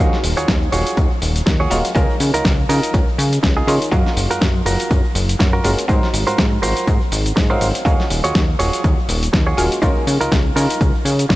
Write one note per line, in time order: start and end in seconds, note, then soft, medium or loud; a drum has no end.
0.00 0.10 D#2 loud
0.00 1.68 F#3 medium
0.00 1.68 G#3 medium
0.00 1.69 A#3 medium
0.00 1.69 C#4 medium
0.00 0.18 F4 loud
0.00 0.18 F#4 medium
0.00 0.18 G#4 medium
0.00 0.18 C#5 loud
0.00 1.69 F5 medium
0.00 cabasa soft
0.13 snare soft
0.13 shaker soft
0.24 0.35 D#1 medium
0.24 open hi-hat loud
0.24 cabasa medium
0.37 0.46 D#2 soft
0.37 0.55 F4 medium
0.37 0.55 F#4 medium
0.37 0.55 G#4 medium
0.37 0.55 C#5 medium
0.37 closed hi-hat medium
0.37 cabasa soft
0.37 shaker medium
0.48 0.69 D#2 medium
0.48 kick loud
0.48 snare loud
0.48 closed hi-hat medium
0.48 cabasa soft
0.48 shaker medium
0.62 shaker soft
0.72 0.84 D#1 loud
0.72 1.11 F4 medium
0.72 1.11 F#4 medium
0.72 1.11 G#4 medium
0.72 1.11 C#5 medium
0.72 open hi-hat medium
0.72 cabasa medium
0.87 closed hi-hat medium
0.87 cabasa soft
0.87 shaker medium
0.97 1.08 D#2 medium
0.97 kick loud
0.97 closed hi-hat medium
0.97 cabasa soft
0.97 shaker medium
1.11 shaker soft
1.22 1.42 D#1 medium
1.22 open hi-hat loud
1.22 cabasa medium
1.36 closed hi-hat medium
1.36 cabasa soft
1.36 shaker medium
1.46 1.67 D#2 loud
1.46 muted clean electric guitar stroke medium
1.46 kick loud
1.46 snare loud
1.46 closed hi-hat medium
1.46 cabasa soft
1.60 1.78 F4 medium
1.60 1.78 F#4 medium
1.60 1.78 G#4 medium
1.60 1.78 C#5 loud
1.60 shaker soft
1.71 1.82 D#1 medium
1.71 1.93 F#3 medium
1.71 1.93 G#3 medium
1.71 1.93 A#3 medium
1.71 1.93 C#4 medium
1.71 1.93 F4 medium
1.71 open hi-hat medium
1.71 cabasa medium
1.85 closed hi-hat medium
1.85 cabasa soft
1.85 shaker medium
1.95 2.07 C#2 loud
1.95 3.65 D#3 medium
1.95 3.65 G#3 medium
1.95 3.65 A#3 medium
1.95 3.65 C#4 medium
1.95 2.15 D#4 loud
1.95 2.15 F4 medium
1.95 3.66 F4 medium
1.95 2.15 A#4 loud
1.95 kick loud
1.95 closed hi-hat medium
1.95 cabasa soft
1.95 shaker medium
2.10 shaker soft
2.20 2.31 C#3 medium
2.20 open hi-hat loud
2.20 cabasa medium
2.34 2.43 C#2 soft
2.34 2.52 D#4 medium
2.34 2.52 F4 medium
2.34 2.52 A#4 medium
2.34 closed hi-hat medium
2.34 cabasa soft
2.34 shaker medium
2.45 2.65 C#2 medium
2.45 kick loud
2.45 snare loud
2.45 closed hi-hat medium
2.45 cabasa soft
2.59 shaker soft
2.69 2.80 C#3 loud
2.69 3.08 D#4 medium
2.69 3.08 F4 medium
2.69 3.08 A#4 medium
2.69 open hi-hat loud
2.69 cabasa medium
2.83 closed hi-hat medium
2.83 cabasa soft
2.83 shaker medium
2.94 3.05 C#2 medium
2.94 kick loud
2.94 closed hi-hat medium
2.94 cabasa soft
2.94 shaker medium
3.08 shaker soft
3.18 3.39 C#3 medium
3.18 open hi-hat loud
3.18 cabasa medium
3.33 closed hi-hat medium
3.33 cabasa soft
3.33 shaker medium
3.43 3.64 C#2 loud
3.43 muted clean electric guitar stroke medium
3.43 kick loud
3.43 snare loud
3.43 closed hi-hat medium
3.43 cabasa soft
3.57 3.75 D#4 loud
3.57 3.75 F4 loud
3.57 3.75 G#4 loud
3.57 shaker soft
3.67 3.79 C#3 medium
3.67 3.90 D#3 medium
3.67 3.90 G#3 medium
3.67 3.90 A#3 medium
3.67 3.90 C#4 medium
3.67 3.90 F4 medium
3.67 open hi-hat medium
3.67 cabasa medium
3.81 closed hi-hat medium
3.81 cabasa soft
3.81 shaker medium
3.92 4.04 F#2 loud
3.92 5.61 F#3 medium
3.92 5.62 G#3 medium
3.92 5.62 A#3 medium
3.92 5.62 C#4 medium
3.92 4.11 F4 loud
3.92 4.11 F#4 medium
3.92 4.12 A#4 loud
3.92 5.62 F5 loud
3.92 kick loud
3.92 closed hi-hat medium
3.92 cabasa soft
3.92 shaker medium
4.07 snare soft
4.07 shaker soft
4.17 4.28 F#1 medium
4.17 open hi-hat loud
4.17 cabasa medium
4.30 4.39 F#2 soft
4.30 4.48 F4 medium
4.30 4.48 F#4 medium
4.30 4.48 A#4 medium
4.30 closed hi-hat medium
4.30 cabasa soft
4.30 shaker medium
4.41 4.62 F#2 medium
4.41 kick loud
4.41 snare loud
4.41 closed hi-hat soft
4.41 cabasa soft
4.41 shaker medium
4.56 shaker soft
4.66 4.77 F#1 loud
4.66 5.04 F4 medium
4.66 5.04 F#4 medium
4.66 5.05 A#4 medium
4.66 open hi-hat loud
4.66 cabasa medium
4.80 closed hi-hat medium
4.80 cabasa soft
4.80 shaker medium
4.91 5.02 F#2 medium
4.91 kick loud
4.91 closed hi-hat medium
4.91 cabasa soft
4.91 shaker medium
5.04 shaker soft
5.15 5.36 F#1 medium
5.15 open hi-hat loud
5.15 cabasa medium
5.29 closed hi-hat medium
5.29 cabasa soft
5.29 shaker medium
5.39 5.60 F#2 loud
5.39 muted clean electric guitar stroke medium
5.39 kick loud
5.39 snare loud
5.39 closed hi-hat medium
5.39 cabasa soft
5.39 shaker medium
5.53 5.71 F4 medium
5.53 5.71 F#4 medium
5.53 5.71 A#4 loud
5.53 shaker soft
5.64 5.76 F#1 medium
5.64 5.86 F#3 medium
5.64 5.86 G#3 medium
5.64 5.86 A#3 medium
5.64 5.87 C#4 medium
5.64 5.87 F4 medium
5.64 open hi-hat loud
5.64 cabasa medium
5.79 closed hi-hat medium
5.79 cabasa soft
5.79 shaker medium
5.88 6.00 G#2 loud
5.88 7.47 F#3 medium
5.88 7.47 A#3 medium
5.88 7.48 C4 medium
5.88 7.48 D#4 medium
5.88 6.08 F4 loud
5.88 6.08 F#4 medium
5.88 6.08 A#4 loud
5.88 6.08 C5 loud
5.88 7.48 F5 loud
5.88 kick loud
5.88 closed hi-hat soft
5.88 cabasa soft
5.88 shaker medium
6.03 snare soft
6.03 shaker soft
6.14 6.25 G#1 medium
6.14 open hi-hat loud
6.14 cabasa medium
6.27 6.36 G#2 soft
6.27 6.45 F4 medium
6.27 6.45 F#4 medium
6.27 6.45 A#4 medium
6.27 6.45 C5 medium
6.27 closed hi-hat medium
6.27 cabasa soft
6.27 shaker medium
6.38 6.59 G#2 medium
6.38 kick loud
6.38 snare loud
6.38 closed hi-hat soft
6.38 cabasa soft
6.38 shaker medium
6.52 shaker soft
6.62 6.74 G#1 loud
6.62 7.01 F4 medium
6.62 7.01 F#4 medium
6.62 7.01 A#4 medium
6.62 7.01 C5 medium
6.62 open hi-hat loud
6.62 cabasa medium
6.77 closed hi-hat medium
6.77 cabasa soft
6.77 shaker medium
6.87 6.99 G#2 medium
6.87 kick loud
6.87 closed hi-hat soft
6.87 cabasa soft
6.87 shaker medium
7.01 shaker soft
7.12 7.33 G#1 medium
7.12 open hi-hat loud
7.12 cabasa medium
7.25 closed hi-hat medium
7.25 cabasa soft
7.25 shaker medium
7.36 7.57 G#2 loud
7.36 muted clean electric guitar stroke medium
7.36 kick loud
7.36 snare loud
7.36 closed hi-hat soft
7.36 cabasa soft
7.36 shaker medium
7.50 7.83 F#3 medium
7.50 7.83 A#3 medium
7.50 7.83 C4 medium
7.50 7.83 D#4 medium
7.50 7.68 F4 loud
7.50 7.68 F#4 medium
7.50 7.68 A#4 loud
7.50 7.68 C5 loud
7.50 7.83 F5 medium
7.50 shaker soft
7.61 7.72 G#1 medium
7.61 open hi-hat medium
7.61 cabasa medium
7.75 closed hi-hat medium
7.75 cabasa soft
7.75 shaker medium
7.85 7.97 D#2 loud
7.85 9.55 F#3 medium
7.85 9.55 G#3 medium
7.85 9.55 A#3 medium
7.85 9.56 C#4 medium
7.85 8.05 F4 loud
7.85 8.05 F#4 loud
7.85 8.05 G#4 loud
7.85 8.05 C#5 loud
7.85 9.56 F5 medium
7.85 kick loud
7.85 closed hi-hat soft
7.85 cabasa soft
7.85 shaker medium
7.99 snare soft
7.99 shaker soft
8.10 8.22 D#1 medium
8.10 open hi-hat loud
8.10 cabasa medium
8.23 8.33 D#2 soft
8.23 8.42 F4 medium
8.23 8.42 F#4 medium
8.23 8.42 G#4 medium
8.23 8.42 C#5 medium
8.23 closed hi-hat medium
8.23 cabasa soft
8.23 shaker medium
8.35 8.55 D#2 medium
8.35 kick loud
8.35 snare loud
8.35 closed hi-hat soft
8.35 cabasa soft
8.35 shaker medium
8.49 shaker soft
8.59 8.71 D#1 loud
8.59 8.98 F4 medium
8.59 8.98 F#4 medium
8.59 8.98 G#4 medium
8.59 8.98 C#5 medium
8.59 open hi-hat medium
8.59 cabasa medium
8.73 closed hi-hat medium
8.73 cabasa soft
8.73 shaker medium
8.84 8.95 D#2 loud
8.84 kick loud
8.84 closed hi-hat soft
8.84 cabasa soft
8.84 shaker medium
8.98 shaker soft
9.09 9.29 D#1 medium
9.09 open hi-hat loud
9.09 cabasa medium
9.23 closed hi-hat medium
9.23 cabasa soft
9.23 shaker medium
9.33 9.54 D#2 loud
9.33 muted clean electric guitar stroke medium
9.33 kick loud
9.33 snare loud
9.33 closed hi-hat soft
9.33 cabasa soft
9.33 shaker medium
9.47 9.65 F4 loud
9.47 9.65 F#4 loud
9.47 9.65 G#4 loud
9.47 9.65 C#5 loud
9.47 shaker soft
9.57 9.69 D#1 medium
9.57 9.80 F#3 medium
9.57 9.80 G#3 medium
9.57 9.80 A#3 medium
9.57 9.80 C#4 medium
9.57 9.80 F4 medium
9.57 open hi-hat medium
9.57 cabasa medium
9.72 closed hi-hat medium
9.72 cabasa soft
9.72 shaker medium
9.82 9.94 C#2 loud
9.82 11.36 D#3 medium
9.82 11.36 G#3 medium
9.82 11.36 A#3 medium
9.82 11.36 C#4 medium
9.82 10.02 D#4 loud
9.82 10.02 F4 loud
9.82 11.36 F4 medium
9.82 10.02 A#4 loud
9.82 kick loud
9.82 closed hi-hat medium
9.82 cabasa soft
9.82 shaker medium
9.96 shaker soft
10.07 10.18 C#3 medium
10.07 open hi-hat loud
10.07 cabasa medium
10.21 10.30 C#2 soft
10.21 10.38 D#4 medium
10.21 10.39 F4 medium
10.21 10.39 A#4 loud
10.21 closed hi-hat medium
10.21 cabasa soft
10.21 shaker medium
10.32 10.52 C#2 medium
10.32 kick loud
10.32 snare loud
10.32 closed hi-hat medium
10.32 cabasa soft
10.46 shaker soft
10.56 10.67 C#3 loud
10.56 10.95 D#4 medium
10.56 10.95 F4 medium
10.56 10.95 A#4 medium
10.56 open hi-hat medium
10.56 cabasa medium
10.70 closed hi-hat medium
10.70 cabasa soft
10.70 shaker medium
10.81 10.92 C#2 medium
10.81 kick loud
10.81 closed hi-hat medium
10.81 cabasa soft
10.81 shaker medium
10.95 shaker soft
11.05 11.26 C#3 medium
11.05 open hi-hat loud
11.05 cabasa medium
11.19 closed hi-hat medium
11.19 cabasa soft
11.19 shaker medium
11.29 11.36 C#2 loud
11.29 muted clean electric guitar stroke medium
11.29 kick loud
11.29 snare loud
11.29 closed hi-hat medium
11.29 cabasa soft
11.29 shaker medium